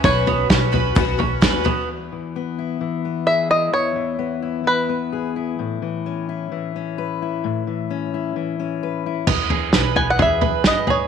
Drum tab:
CC |--------|--------|--------|--------|
SD |--o---o-|--------|--------|--------|
FT |oo-ooo-o|--------|--------|--------|
BD |o-o-o-o-|--------|--------|--------|

CC |--------|x-------|
SD |--------|--o---o-|
FT |--------|oo-ooo-o|
BD |--------|o-o-o-o-|